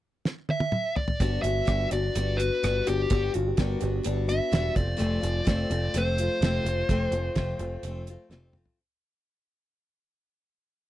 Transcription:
0.25 snare
0.49 lead electric guitar E5, high tom
0.60 high tom
0.72 mid tom
0.96 lead electric guitar D5, floor tom
1.08 floor tom
1.20 picked electric bass G1, steel-string acoustic guitar G3 B3 D4 F#4, lead electric guitar D5, kick, closed hi-hat
1.42 picked electric bass G1, steel-string acoustic guitar B3 D4 F#4, lead electric guitar E5, closed hi-hat
1.65 picked electric bass G1, steel-string acoustic guitar G3 B3 D4 F#4, kick, cross-stick, closed hi-hat
1.91 picked electric bass G1, steel-string acoustic guitar B3 D4 F#4, lead electric guitar D5, closed hi-hat
2.15 picked electric bass G1, steel-string acoustic guitar G3 B3 D4 F#4, closed hi-hat
2.37 steel-string acoustic guitar D4 F#4, lead electric guitar B4, closed hi-hat
2.42 steel-string acoustic guitar B3
2.63 picked electric bass G1, steel-string acoustic guitar G3 B3 D4 F#4, cross-stick, closed hi-hat
2.86 picked electric bass G1, steel-string acoustic guitar B3 D4 F#4, lead electric guitar G4, closed hi-hat
3.10 picked electric bass G1, steel-string acoustic guitar G3 B3 D4 F#4, kick, closed hi-hat
3.34 picked electric bass G1, steel-string acoustic guitar B3 D4 F#4, upright piano F4, closed hi-hat
3.47 upright piano G4
3.57 picked electric bass G1, steel-string acoustic guitar G3 B3 D4 F#4, upright piano A#4, kick, snare, closed hi-hat
3.80 picked electric bass G1, upright piano B3 G4, steel-string acoustic guitar B3 D4 F#4, closed hi-hat
4.03 picked electric bass G1, steel-string acoustic guitar G3 B3 D4 F#4, closed hi-hat
4.28 steel-string acoustic guitar B3 D4 F#4, lead electric guitar E5, closed hi-hat
4.52 picked electric bass E1, steel-string acoustic guitar G3 B3 D4 F#4, snare, closed hi-hat
4.75 picked electric bass F1, steel-string acoustic guitar F3 A3 C4 F4, lead electric guitar D5, kick, closed hi-hat
4.97 picked electric bass F1, steel-string acoustic guitar F2 C3 F3 A3 C4 F4, closed hi-hat
5.20 picked electric bass F1, steel-string acoustic guitar F3 A3 C4 F4, closed hi-hat
5.45 picked electric bass F1, steel-string acoustic guitar F2 C3 F3 A3 C4 F4, lead electric guitar D5, kick, snare, closed hi-hat
5.70 picked electric bass F1, steel-string acoustic guitar F3 A3 C4 F4, closed hi-hat
5.94 picked electric bass F1, steel-string acoustic guitar F3 A3 C4 F4, lead electric guitar C5, closed hi-hat
6.18 steel-string acoustic guitar A3 C4 F4, closed hi-hat
6.23 steel-string acoustic guitar F3
6.41 picked electric bass F1, steel-string acoustic guitar F2 C3 F3, snare, closed hi-hat
6.45 steel-string acoustic guitar A3 C4 F4
6.65 picked electric bass F1, steel-string acoustic guitar F3 A3 C4 F4, closed hi-hat
6.89 picked electric bass F1, steel-string acoustic guitar F2 C3 F3 A3 C4 F4, kick, closed hi-hat
7.11 picked electric bass F1, steel-string acoustic guitar F3 A3 C4 F4, closed hi-hat
7.35 picked electric bass F1, steel-string acoustic guitar F2 C3 F3 A3 C4 F4, kick, snare, closed hi-hat
7.59 picked electric bass F1, steel-string acoustic guitar F3 A3 C4 F4, closed hi-hat
7.83 picked electric bass F1, steel-string acoustic guitar F3 A3, closed hi-hat
7.88 steel-string acoustic guitar C4 F4
8.07 steel-string acoustic guitar C4 F4, closed hi-hat
8.11 steel-string acoustic guitar F3 A3
8.30 picked electric bass F1, steel-string acoustic guitar F2 C3 F3 A3 C4 F4, snare
8.53 steel-string acoustic guitar F3 A3 C4 F4, mid tom
8.65 floor tom

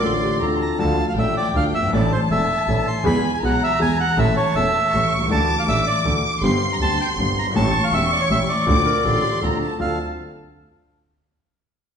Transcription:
Already playing: bandoneon D5
0.01 grand piano A1 A2 D3 A3 C4 F4, double bass A1, clarinet A4, violin section C6
0.23 clarinet G4
0.39 double bass D2, grand piano D2 D3 A3 C4, clarinet A4, violin section A#5
0.43 grand piano F4
0.59 violin section A5, bandoneon A#5
0.78 double bass D2, grand piano D2 D3 F3 A3 D4 A4, violin section F5, bandoneon A5
1.09 bandoneon F5
1.15 double bass A1, grand piano A1 A2 F3 A3 D4 A4, bandoneon E5, violin section G5
1.37 bandoneon D5
1.54 double bass D2, grand piano D2 D3 F3 A3 D4 A4, bandoneon F5
1.74 double bass G1, bandoneon E5
1.80 grand piano F#1 G1
1.88 grand piano G#1, double bass A1, violin section A5
1.92 grand piano A1 A2 E3 A3 D4 A4, bandoneon D5
2.12 bandoneon C5
2.31 double bass E1, grand piano E1 E2 E3 A3 D4 A4, bandoneon E5
2.68 double bass A1, grand piano A1 A2 E3 A3 D4 A4
2.88 bandoneon C6
3.04 double bass E2, grand piano E2 E3 G#3 B3 G#4, violin section G#5, bandoneon B5
3.34 bandoneon G#5
3.42 double bass B1, grand piano B1 B2 E3 G#3 B3 G#4, bandoneon F#5, violin section A#5
3.63 bandoneon E5
3.79 grand piano E2 E3 G#3 B3 G#4, double bass E2, bandoneon G#5
4.00 bandoneon F#5
4.17 double bass A1, grand piano A1 A2 E3 A3 C#4 A4, bandoneon E5, violin section A5
4.37 bandoneon C#5
4.55 double bass E1, grand piano E1 E2 E3 A3 C#4 A4, bandoneon E5
4.92 double bass A1, grand piano A1 A2 E3 A3 C#4 A4, violin section C#6
5.11 double bass C2, bandoneon C#6
5.16 grand piano B1
5.21 grand piano C2
5.26 grand piano C#2 D2 D3 E3 D4
5.30 double bass D2, grand piano A3 A4, bandoneon A5, violin section D6
5.59 bandoneon F5
5.67 grand piano A1 A2 E3 A3 D4 A4, double bass A1, bandoneon E5
5.87 bandoneon D5
6.05 double bass D2, grand piano D2 D3 E3 A3 D4 A4
6.26 bandoneon D6
6.42 double bass G1, grand piano G1 G2 D3 G3 C4 G4, violin section C6, bandoneon C6
6.73 bandoneon A#5
6.80 double bass D2, grand piano D2 D3 G3 C4 G4, bandoneon A5
7.01 bandoneon G5
7.17 double bass G1, grand piano G1 G2 D3 G3 C4 G4
7.36 double bass G1, bandoneon A#5
7.42 grand piano F#1 G1
7.51 grand piano G#1 A1 E3 A3, double bass A1
7.55 grand piano A2 C#4 G4, bandoneon A5, violin section C#6
7.84 bandoneon F5
7.92 double bass E1, grand piano E1 E2 E3 A3 C#4 G4, bandoneon E5
8.12 bandoneon D5
8.21 bandoneon C#5
8.30 double bass A1, grand piano A1 A2 E3 A3 C#4 G4, bandoneon E5
8.49 bandoneon D5
8.66 double bass D2, grand piano D2 D3 A3 C4 F4, violin section D6
8.85 clarinet A#4
9.03 grand piano A1 A2 D3 A3 C4 F4, double bass A1, clarinet A4, violin section C6
9.23 clarinet G4
9.41 grand piano D2 D3 A3 C4 F4, double bass D2, clarinet A4, violin section A#5
9.62 violin section A5
9.79 grand piano D2 C4 D4 F4, double bass D2, clarinet A4, bandoneon F5, violin section A5

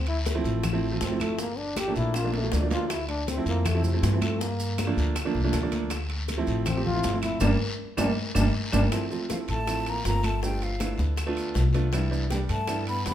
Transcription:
Already playing: upright bass D2
0.07 trombone E4, high conga, high timbale
0.26 high bongo, high conga, high timbale, short guiro, maracas
0.35 upright piano F3 A3 C4 E4
0.44 upright bass A1, high conga, short guiro, maracas
0.64 high bongo, high conga, low conga, high timbale, long guiro, claves, maracas
0.73 upright piano F3 A3 C4 E4
0.92 upright piano F3 A3 C4 F4
1.01 upright bass G1, trombone C4, high bongo, low bongo, high conga, high timbale, low timbale, short guiro, maracas
1.11 upright piano F3 A3 C4 E4
1.20 trombone A3, high conga, high timbale, short guiro, claves, maracas
1.39 trombone A#3, high bongo, high conga, long guiro, maracas
1.57 trombone D4, high bongo, high conga
1.76 trombone G4, high bongo, high conga, high timbale, short guiro, claves, maracas
1.87 upright piano F3 A3 A#3 D4
1.95 upright bass A#1, trombone E4, high conga, short guiro, maracas
2.14 trombone F4, high bongo, high conga, high timbale, long guiro, claves, maracas
2.24 upright piano F3 A3 A#3 D4
2.33 trombone A3, high bongo, high conga, high timbale
2.43 upright piano F3 A3 A#3 F4
2.52 upright bass D2, trombone D4, high bongo, low bongo, high conga, low timbale, short guiro, maracas
2.62 upright piano F3 A3 A#3 D4
2.71 trombone F4, high bongo, high conga, low timbale, short guiro, maracas
2.90 trombone E4, high bongo, high conga, high timbale, long guiro, claves, maracas
3.08 trombone D4, high conga, high timbale
3.27 trombone C4, high bongo, high conga, high timbale, short guiro, maracas
3.37 upright piano F3 A3 C4 E4
3.46 upright bass F2, trombone A#3, high conga, short guiro, maracas
3.65 trombone A3, high bongo, high conga, low conga, high timbale, long guiro, claves, maracas
3.74 upright piano F3 A3 C4 E4
3.83 trombone C3, high conga, low conga, maracas
3.93 upright piano F3 A3 C4 E4
4.02 upright bass G2, trombone E3, high bongo, low bongo, high conga, high timbale, low timbale, short guiro, maracas
4.13 upright piano F3 A3 C4 E4
4.21 trombone A3, high conga, high timbale, short guiro, claves, maracas
4.40 trombone A#3, high bongo, high conga, long guiro, maracas
4.60 high bongo, high conga, maracas
4.78 high bongo, high conga, high timbale, short guiro, claves, maracas
4.87 upright piano F3 A3 A#3 D4
4.97 upright bass D2, high conga, short guiro, maracas
5.15 high bongo, high conga, high timbale, long guiro, claves, maracas
5.25 upright piano F3 A3 A#3 D4
5.35 upright bass C2, high bongo, high conga
5.44 upright piano F3 A3 A#3 D4
5.53 upright bass D2, high bongo, low bongo, high timbale, short guiro, maracas
5.63 upright piano F3 A3 A#3 D4
5.72 high bongo, high conga, high timbale, short guiro, maracas
5.90 high bongo, high conga, high timbale, long guiro, claves, maracas
6.10 high conga, high timbale
6.28 high bongo, high conga, high timbale, short guiro, maracas
6.37 upright piano F3 A3 C4 E4
6.47 upright bass A1, high conga, short guiro, maracas
6.66 trombone C4, high bongo, high conga, low conga, high timbale, long guiro, claves, maracas
6.76 upright piano F3 A3 C4 G4
6.85 trombone F4, high conga, low conga
6.94 upright piano F3 A3 C4 E4
7.03 upright bass G1, high bongo, low bongo, high conga, high timbale, short guiro, maracas
7.12 upright piano F3 A3 C4 E4
7.22 trombone E4, high conga, high timbale, short guiro, claves, maracas
7.40 upright bass G1, upright piano G3 A#3 D4, trombone D4, low bongo, high conga, high timbale, long guiro, claves, maracas
7.97 upright bass G1, upright piano G3 A#3 D4, trombone D4, low bongo, high conga, high timbale, long guiro, claves, maracas
8.35 upright bass G1, upright piano G3 A#3 D4, trombone D4, low bongo, high conga, high timbale, long guiro, claves, maracas
8.72 upright bass G1, upright piano G3 A#3 D4, trombone D4, low bongo, high conga, high timbale, long guiro, claves, maracas
8.92 upright piano F3 A3 C4 E4, high bongo, high timbale, long guiro, claves, maracas
9.10 upright piano F3 A3 C4 F4, high conga, maracas
9.29 upright piano F3 A3 C4 E4, trombone F3, flute F5, high bongo, high conga, high timbale, short guiro, maracas
9.48 upright bass A1, trombone A3, flute A5, high conga, high timbale, short guiro, maracas
9.67 upright piano F3 A3 C4 E4, high bongo, high conga, high timbale, long guiro, claves, maracas
9.86 trombone A#3, flute A#5, high conga, high timbale, maracas
10.04 upright bass G1, upright piano F3 A3 C4 F4, trombone A#3, flute A#5, high bongo, low bongo, high conga, high timbale, short guiro, maracas
10.23 trombone A3, flute A5, high conga, high timbale, short guiro, claves, maracas
10.42 trombone G3, upright piano A3 B3 D4 F4, flute G5, high bongo, high conga, long guiro, maracas
10.61 trombone F3, flute F5, high bongo, high conga, high timbale, maracas
10.79 upright piano A3 B3 D4 E4, high bongo, high conga, high timbale, short guiro, claves, maracas
10.98 upright bass D2, high bongo, high conga, short guiro, maracas
11.16 high bongo, high conga, high timbale, long guiro, claves, maracas
11.26 upright piano A3 B3 D4 F4
11.37 high conga, high timbale, maracas
11.54 upright bass C2, high bongo, low bongo, high conga, low timbale, short guiro, maracas
11.73 upright piano A3 B3 D4 F4, high bongo, high conga, high timbale, short guiro, maracas
11.92 upright piano G3 B3 D4 E4, high bongo, high conga, high timbale, long guiro, claves, maracas
12.11 upright piano G3 B3 D4 E4, high conga, maracas
12.30 upright piano G3 B3 D4 G4, trombone G3, flute G5, high bongo, high conga, high timbale, short guiro, maracas
12.49 upright bass G2, trombone A3, flute A5, high conga, high timbale, short guiro, maracas
12.68 upright piano G3 B3 D4 E4, high bongo, high conga, high timbale, long guiro, claves, maracas
12.87 trombone B3, flute B5, high conga, high timbale, maracas
13.05 upright bass F2, upright piano G3 B3 D4 G4, trombone B3, flute B5, high bongo, low bongo, high conga, high timbale, low timbale, short guiro, maracas

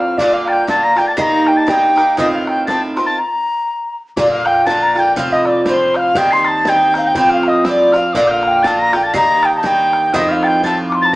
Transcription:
Already playing: bouzouki A2 F3 C4 F4, flute F5
0.00 tin whistle F6
0.18 bouzouki A#2 D3 A#3 F4, flute D5, tin whistle D6, bodhran
0.33 flute F5
0.47 flute G5, tin whistle A6, bodhran
0.52 tin whistle G6
0.67 bouzouki A#2 D3 A#3 F4, flute A5, tin whistle A6, bodhran
0.83 flute A#5, tin whistle A#6
0.96 bouzouki D3 A#3 F4, flute G5, tin whistle G6, bodhran
1.08 flute A5, tin whistle A6
1.17 bouzouki G2 D#3 A#3 D#4, flute A#5, tin whistle C7, bodhran
1.22 tin whistle A#6
1.46 flute G5, tin whistle G6, bodhran
1.57 flute A5, tin whistle A6
1.67 bouzouki G2 D#3 A#3 D#4, flute G5, tin whistle A6, bodhran
1.73 tin whistle G6
1.96 bouzouki D#3 A#3 D#4, bodhran
2.17 bouzouki A2 D#3 C4 F4, flute D#5, tin whistle D#6, bodhran
2.33 flute F5, tin whistle F6
2.46 flute G5, tin whistle G6, bodhran
2.67 bouzouki A2 D#3 C4 F4, flute A5, tin whistle A6, bodhran
2.96 bouzouki D#3 C4 F4, flute C6, bodhran
3.06 flute A5, tin whistle A6
3.18 flute A#5
4.16 upright bass A#1, bouzouki A#2 D3 A#3 F4, flute D5, tin whistle D6, bodhran
4.31 flute F5, tin whistle F6
4.45 flute G5, tin whistle G6, bodhran
4.66 bouzouki A#2 D3 A#3, flute A5, tin whistle A6, bodhran
4.70 bouzouki F4
4.83 flute A#5
4.95 bouzouki D3 A#3 F4, flute G5, tin whistle A6, bodhran
5.00 tin whistle G6
5.16 upright bass F1, bouzouki A2 F3 C4 F4, flute F5, tin whistle F6, bodhran
5.32 flute D#5, tin whistle D#6
5.45 flute D5, tin whistle E6, bodhran
5.49 tin whistle D6
5.66 bouzouki A2 F3 C4 F4, flute C5, tin whistle D6, bodhran
5.71 tin whistle C6
5.94 flute F5, tin whistle G6, bodhran
5.99 tin whistle F6
6.15 upright bass D#2, bouzouki G2 D#3 C4 D#4, flute G5, tin whistle G6, bodhran
6.31 flute C6, tin whistle C7
6.44 flute A5, tin whistle A6, bodhran
6.65 bouzouki G2 D#3 C4 D#4, tin whistle G6, bodhran
6.69 flute G5
6.94 bouzouki C4 D#4, flute F5, bodhran
6.98 bouzouki D#3
7.05 flute G5, tin whistle G6
7.15 upright bass F2, bouzouki A2 F3 C4 F4, flute G5, tin whistle G6, bodhran
7.29 flute F5, tin whistle F6
7.43 tin whistle F6, bodhran
7.48 flute D#5, tin whistle D#6
7.64 bouzouki A2 F3 C4 F4, tin whistle E6, bodhran
7.69 flute D5, tin whistle D6
7.92 bouzouki C4 F4, tin whistle F6, bodhran
7.97 bouzouki F3, flute F5
8.13 upright bass A#1, bouzouki A#2 D3 A#3, tin whistle D6, bodhran
8.17 bouzouki F4, flute D5
8.27 tin whistle F6 G6
8.33 flute F5
8.43 bodhran
8.48 flute G5
8.63 bouzouki A#2 D3 A#3, flute A5, tin whistle A6, bodhran
8.67 bouzouki F4
8.78 flute A#5, tin whistle A#6
8.93 bouzouki D3 A#3 F4, flute G5, tin whistle G6, bodhran
9.03 flute A5, tin whistle A6
9.14 upright bass D#2, bouzouki G2 D#3 A#3 D#4, flute A#5, tin whistle C7, bodhran
9.18 tin whistle A#6
9.42 flute G5, tin whistle A6, bodhran
9.46 tin whistle G6
9.56 flute A5
9.63 bouzouki G2 D#3 A#3 D#4, flute G5, tin whistle G6, bodhran
9.93 bodhran
10.13 upright bass F2, bouzouki A2 D#3 C4 F4, flute D#5, tin whistle D#6, bodhran
10.28 flute F5, tin whistle F6
10.43 flute G5, tin whistle A6, bodhran
10.47 tin whistle G6
10.63 bouzouki A2 D#3 C4 F4, flute A5, tin whistle A6, bodhran
10.89 flute D6, bodhran
10.95 flute C6
11.02 flute A5, tin whistle A6

